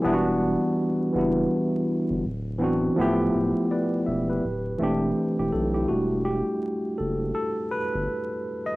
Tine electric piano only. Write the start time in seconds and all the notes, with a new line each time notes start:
0.02 E3 G3 B3 D4
0.07 E4
0.14 F#4
1.13 E3 G3 B3
1.17 D4 E4
2.58 E3 B3 C4 D4
2.64 F#4
2.96 F3 A3 B3
3.00 E4 G4
3.71 B4 D5
4.06 E5
4.29 G4 B4
4.78 E3 A3 C4
4.82 D4 G4
5.39 E4 G4
5.52 A4
5.74 E4 G4
5.88 G3 A3 D4 F#4
6.25 G4
6.98 A4
7.35 A4
7.71 B4
8.66 D#5